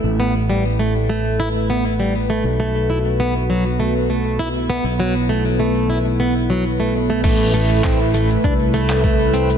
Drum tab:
CC |----------------|----------------|----------------|x---------------|
SH |----------------|----------------|----------------|x-xxx-xxx-xxx-xx|
CP |----------------|----------------|----------------|----x------x----|
BD |----------------|----------------|----------------|o---o---o---o---|